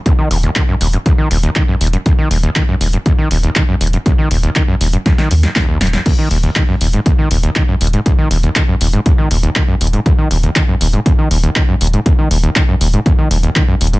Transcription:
<<
  \new Staff \with { instrumentName = "Acid bass" } { \clef bass \time 4/4 \key ees \minor \tempo 4 = 120 ees,16 ees16 ees,16 ees,16 ees16 ges,16 ees,16 ges,16 ees,16 ees16 ees,16 ees,16 ees16 ges,16 ees,16 ges,16 | ees,16 ees16 ees,16 ees,16 ees16 ges,16 ees,16 ges,16 ees,16 ees16 ees,16 ees,16 ees16 ges,16 ees,16 ges,16 | ees,16 ees16 ees,16 ees,16 ees16 ges,16 ees,16 ges,16 ees,16 ees16 ges,16 ees,16 ees,16 ees,16 ges,16 ees,16 | ees,16 ees16 ees,16 ees,16 ees16 ges,16 ees,16 aes,16 ees,16 ees16 ees,16 ees,16 ees16 ges,16 ees,16 aes,16 |
ees,16 ees16 ees,16 ees,16 ees16 ges,16 ees,16 aes,16 ees,16 ees16 ees,16 ees,16 ees16 ges,16 ees,16 aes,16 | ees,16 ees16 ees,16 ees,16 ees16 ges,16 ees,16 aes,16 ees,16 ees16 ees,16 ees,16 ees16 ges,16 ees,16 aes,16 | ees,16 ees16 ees,16 ees,16 ees16 ges,16 ees,16 aes,16 ees,16 ees16 ees,16 ees,16 ees16 ges,16 ees,16 aes,16 | }
  \new Staff \with { instrumentName = "Sub bass" } { \clef bass \time 4/4 \key ees \minor r8 ees,,8 r8 ees,,8 r8 ees,,8 r8 ees,,8 | r8 ees,,8 r8 ees,,8 r8 ees,,8 r8 ees,,8 | r8 ees,,8 r8 ees,,8 r8 ees,8 r8 ees,,8 | r8 ees,,8 r8 ees,,8 r8 ees,,8 r8 ees,,8 |
r8 ees,,8 r8 ees,,8 r8 ees,,8 r8 ees,,8 | r8 ees,,8 r8 ees,,8 r8 ees,,8 r8 ees,,8 | r8 ees,,8 r8 ees,,8 r8 ees,,8 r8 ees,,8 | }
  \new DrumStaff \with { instrumentName = "Drums" } \drummode { \time 4/4 <hh bd>8 hho16 hh16 <hc hh bd>8 hho16 hh16 <hh bd>8 hho16 hh16 <hc hh bd>8 hho32 hh32 hh16 | <hh bd>8 hho16 hh16 <hc hh bd>8 hho16 hh16 <hh bd>8 hho16 hh16 <hc hh bd>8 hho32 hh32 hh16 | <hh bd>8 hho16 hh16 <hc hh bd>8 hho16 hh16 <hh bd sn>16 sn16 hho16 <hh sn>16 <hc hh bd sn>8 <hho sn>32 hh32 <hh sn>16 | <cymc hh bd>8 hho16 hh16 <hc hh bd>8 hho16 hh16 <hh bd>8 hho16 hh16 <hc hh bd>8 hho32 hh32 hh16 |
<hh bd>8 hho16 hh16 <hc hh bd>8 hho16 hh16 <hh bd>8 hho16 hh16 <hc hh bd>8 hho32 hh32 hh16 | <hh bd>8 hho16 hh16 <hc hh bd>8 hho16 hh16 <hh bd>8 hho16 hh16 <hc hh bd>8 hho32 hh32 hh16 | <hh bd>8 hho16 hh16 <hc hh bd>8 hho16 hh16 <hh bd>8 hho16 hh16 <hc hh bd>8 hho32 hh32 hh16 | }
>>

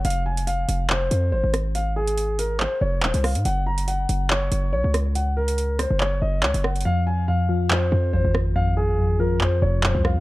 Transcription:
<<
  \new Staff \with { instrumentName = "Grand piano" } { \time 4/4 \key f \phrygian \tempo 4 = 141 f''8 aes''8 f''4 c''4 c''8 r8 | f''8 aes'4 bes'8 c''8 des''8 c''8 f''8 | ges''8 bes''8 ges''4 des''4 des''8 r8 | ges''8 bes'4 c''8 des''8 ees''8 des''8 ges''8 |
f''8 aes''8 f''4 c''4 c''8 r8 | f''8 aes'4 bes'8 c''8 des''8 c''8 f''8 | }
  \new Staff \with { instrumentName = "Synth keys" } { \clef bass \time 4/4 \key f \phrygian r1 | r1 | r1 | r1 |
f,4 f,8 f8 f,8 f,8 f,4 | f,4 f,8 f8 f,8 f,8 f,4 | }
  \new Staff \with { instrumentName = "808-style bass" } { \clef bass \time 4/4 \key f \phrygian f,,4. f,,4 f,8 aes,,16 aes,,8.~ | aes,,2~ aes,,16 r16 f,,8 ees,,16 c,8 aes,16 | ges,,4. ges,,4 ges,,8 bes,,16 des,8.~ | des,4.~ des,16 ges,,8. ges,,8 des,16 ges,,8. |
r2 r8 f,8 aes,,16 aes,,8.~ | aes,,2~ aes,,16 r16 f,,8 ees,,16 c,8 aes,16 | }
  \new DrumStaff \with { instrumentName = "Drums" } \drummode { \time 4/4 hh32 hh8 r32 hh16 hh8 hh8 hc8 hh8 r8 <hh ss>8 | hh8. hh16 hh8 hh8 hc4 hc16 hh16 <hho ss>16 hh16 | hh8. hh16 hh8 hh8 hc8 hh8 r8 <hh ss>8 | hh8. hh16 hh8 <hh ss>8 hc4 hc16 hh16 ss16 hh32 hh32 |
r4 r4 hc4 r8 ss8 | r4 r4 hc4 hc8 ss8 | }
>>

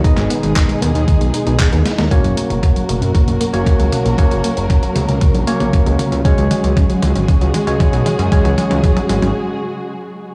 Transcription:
<<
  \new Staff \with { instrumentName = "Tine electric piano" } { \time 4/4 \key ges \major \tempo 4 = 116 <ces' ees' aes' ees''>2~ <ces' ees' aes' ees''>8 r4. | <bes des' ges' des''>2~ <bes des' ges' des''>8. <bes des' ges' des''>4~ <bes des' ges' des''>16 | <bes des' ges' des''>2~ <bes des' ges' des''>8 <bes des' ges' des''>4. | <aes des' ges' des''>2~ <aes des' ges' des''>8. <aes des' ges' des''>4~ <aes des' ges' des''>16 |
<aes des' ges' des''>2 r2 | }
  \new Staff \with { instrumentName = "String section" } { \time 4/4 \key ges \major << { <aes ees' aes'>1 | <bes ges' bes'>1~ | <bes ges' bes'>1 | <aes ges' aes'>1~ |
<aes ges' aes'>1 | } \\ { <ces ees>1 | <des ges>1~ | <des ges>1~ | <des ges>1~ |
<des ges>1 | } >> }
  \new Staff \with { instrumentName = "Synth arpeggio sound" } { \clef bass \time 4/4 \key ges \major ees16 aes16 ces'16 ees'16 ees16 aes16 ces'16 ees'16 ees16 aes16 ees'16 ees'16 aes'16 ces'16 aes16 ees'16 | des16 ges16 bes16 des'16 des16 ges16 bes16 des'16 des16 ges16 bes16 des'16 des16 ges16 bes16 des'16 | des16 ges16 bes16 des'16 des16 ges16 bes16 des'16 des16 ges16 bes16 des'16 des16 ges16 bes16 des'16 | des16 ges16 aes16 des'16 des16 ges16 aes16 des'16 des16 ges16 aes16 des'16 des16 ges16 aes16 des'16 |
des16 ges16 aes16 des'16 des16 ges16 aes16 des'16 r2 | }
  \new Staff \with { instrumentName = "Analog synth bass" } { \clef bass \time 4/4 \key ges \major r16 aes,,16 r16 aes,,16 r8 ees,16 ees,16 r16 ces,16 r16 ces,16 r16 ees,16 r16 ees,16 | r16 ges,,16 r16 ges,,16 r8 ges,,16 ges,16 r16 ges,,16 r16 ges,,16 r16 des,16 r16 bes,,16 | r16 ges,,16 r16 ges,,16 r8 des,16 des,16 r16 bes,,16 r16 bes,,16 r16 des,16 r16 des,16 | r16 des,16 r16 des,16 r8 des,16 aes,,16 r16 des,16 r16 des,16 r16 ces,16 r16 ges,16 |
r16 des,16 r16 des,16 r8 aes,,16 aes,,16 r2 | }
  \new DrumStaff \with { instrumentName = "Drums" } \drummode { \time 4/4 <hh bd>16 <hc hh>16 hh16 hh16 <hc hh bd>16 hh16 hh16 hh16 <hh bd>16 hh16 hh16 hh16 <hc hh bd>16 hh16 <hh sn>16 <hh sn>16 | <hh bd toml>16 hh16 hh16 <hh toml>16 <hh bd>16 hh16 <hh toml>16 hh16 <hh bd toml>16 hh16 hh16 hh16 <hh bd>16 hh16 <hh toml>16 hh16 | <hh bd toml>16 hh16 hh16 hh16 <hh bd>16 hh16 <hh toml>16 hh16 <hh bd toml>16 hh16 hh16 <hh toml>16 <hh bd>16 hh16 <hh toml>16 hh16 | <hh bd toml>16 hh16 <hh toml>16 hh16 <hh bd toml>16 hh16 <hh toml>16 hh16 <hh bd toml>16 hh16 <hh toml>16 hh16 <hh bd toml>16 hh16 <hh toml>16 hh16 |
<hh bd toml>16 <hh toml>16 <hh toml>16 <hh toml>16 <hh bd toml>16 <hh toml>16 <hh toml>16 <hh toml>16 r4 r4 | }
>>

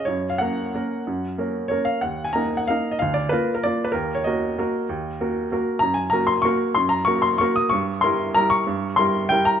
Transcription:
\new Staff \with { instrumentName = "Upright piano" } { \time 3/4 \key dis \minor \tempo 4 = 187 << { cis''8. eis''16 fis''2~ | fis''2 cis''8 eis''8 | fis''8. gis''16 ais''8. fis''16 eis''8. dis''16 | eis''8 d''8 b'8. ais'16 d''8. b'16 |
ais'8. cis''16 dis''2~ | dis''2 r4 | \key ges \lydian bes''8 aes''8 bes''8 c'''8 des'''4 | c'''8 bes''8 des'''8 c'''8 des'''8 ees'''8 |
des'''4 c'''4 bes''8 des'''8~ | des'''4 c'''4 g''8 bes''8 | } \\ { fis,4 <ais cis' ais'>4 <ais cis' ais'>4 | fis,4 <ais cis' ais'>4 <ais cis' ais'>4 | dis,4 <ais dis' ais'>4 <ais dis' ais'>4 | d,4 <ais eis' ais'>4 <ais eis' ais'>4 |
dis,4 <ais fis' ais'>4 <ais fis' ais'>4 | dis,4 <ais fis' ais'>4 <ais fis' ais'>4 | ges,4 <bes ges' bes'>4 <bes ges' bes'>4 | ges,4 <bes ges' bes'>4 <bes ges' bes'>4 |
g,4 <g e' bes'>4 <g e' bes'>4 | g,4 <g e' bes'>4 <g e' bes'>4 | } >> }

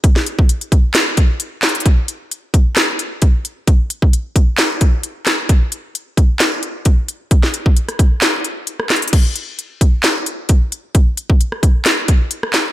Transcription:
\new DrumStaff \with { instrumentName = "Drums" } \drummode { \time 4/4 \tempo 4 = 132 <hh bd>16 sn16 hh16 bd16 hh16 hh16 <hh bd>8 <hc hh sn>8 <hh bd>8 hh8 <hc hh sn>32 hh32 hh32 hh32 | <hh bd>8 hh8 hh8 <hh bd>8 <hc hh sn>8 hh8 <hh bd>8 hh8 | <hh bd>8 hh16 bd16 hh8 <hh bd>8 <hc hh sn>8 <hh bd>8 hh8 <hc hh sn>8 | <hh bd>8 hh8 hh8 <hh bd>8 <hc hh sn>8 hh8 <hh bd>8 hh8 |
<hh bd>16 sn16 hh16 bd16 hh16 <hh ss>16 <hh bd>8 <hc hh sn>8 hh8 hh16 ss16 <hc hh sn>32 hh32 hh32 hh32 | <cymc hh bd>8 hh8 hh8 <hh bd>8 <hc hh sn>8 hh8 <hh bd>8 hh8 | <hh bd>8 hh16 bd16 hh16 ss16 <hh bd>8 <hc hh sn>8 <hh bd>8 hh16 ss16 <hc hh sn>8 | }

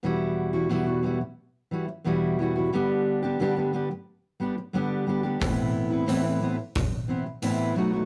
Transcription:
<<
  \new Staff \with { instrumentName = "Steel-string acoustic guitar" } { \time 4/4 \key e \minor \tempo 4 = 89 <e, b, e g e' fis'>8. <e g e' fis'>16 <e, b, e g e' fis'>16 <e g e' fis'>16 <e g e' fis'>8. r16 <e g e' fis'>8 <e, b, e g e' fis'>8 <e g e' fis'>16 <e g e' fis'>16 | <g, d g b d' g'>8. <g b d' g'>16 <g, d g b d' g'>16 <g b d' g'>16 <g b d' g'>8. r16 <g b d' g'>8 <g, d g b d' g'>8 <g b d' g'>16 <g b d' g'>16 | <a, e b c' e'>8. <b c' e'>16 <a, e b c' e'>16 <b c' e'>16 <e b c' e'>8. r16 <e b c' e'>8 <a, e b c' e'>8 <b, fis a dis' fis'>16 <a dis' fis'>16 | }
  \new DrumStaff \with { instrumentName = "Drums" } \drummode { \time 4/4 r4 r4 r4 r4 | r4 r4 r4 r4 | <hho bd>4 hho4 <hho bd>4 hho4 | }
>>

